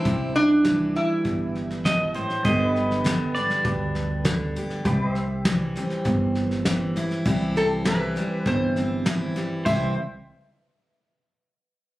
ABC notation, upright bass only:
X:1
M:4/4
L:1/8
Q:1/4=100
K:C
V:1 name="Upright bass" clef=bass
C,,4 G,,,4 | G,,,4 D,,4 | C,,4 G,,,4 | C,,4 G,,,4 |
C,, z6 z |]